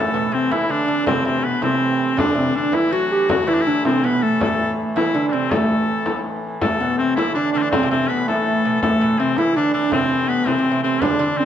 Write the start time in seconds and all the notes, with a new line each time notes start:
Already playing: A2 E3 A4
0.00 A3
0.14 B2, frame drum
0.32 C3 C4
0.51 E3 E4, frame drum
0.69 D3 D4
0.88 D3, frame drum
1.06 C3 C4, frame drum
1.25 C3 C4
1.43 B2 B3 B4
1.62 C3 C4, frame drum
2.00 frame drum
2.17 A2 D3 E3 D4, frame drum
2.35 C3 C4, frame drum
2.55 D3 D4
2.72 E3 E4, frame drum
2.92 F#3 F#4
3.11 G4, frame drum
3.29 F#3 F#4, frame drum
3.43 F#3
3.47 E3 E4, frame drum
3.54 D4
3.61 E4
3.66 D3 D4
3.85 C3 C4, frame drum
4.04 B2 B3 B4
4.22 A3 A4, frame drum
4.40 A2 A3 A4, frame drum
4.60 frame drum
4.96 E3 E4, frame drum
5.14 D3 D4
5.29 C4 D4
5.33 C3 C4, frame drum
5.51 A2 A3 A4, frame drum
5.70 frame drum
6.06 frame drum
6.61 A2 E3 A3 A4, frame drum
6.80 B2 B3, frame drum
6.98 C3 C4
7.16 E3 E4, frame drum
7.34 D3 D4
7.53 D3 D4, frame drum
7.58 C4
7.62 D4
7.71 C3 C4, frame drum
7.78 C3
7.83 C3
7.91 C3 C4, frame drum
8.08 B2 B3 B4
8.27 A2 A3 A4, frame drum
8.64 B2, frame drum
8.82 A2 A3 A4, frame drum
9.01 B2, frame drum
9.19 C3 C4
9.37 E3 E4, frame drum
9.56 D3 D4
9.74 D3 D4, frame drum
9.91 C3 C4, frame drum
10.28 B3 B4, frame drum
10.46 C3 C4, frame drum
10.59 C3
10.65 frame drum
10.71 C3
10.83 C3 C4, frame drum
11.01 A2 D3 E3 D4, frame drum
11.19 D3, frame drum
11.38 C4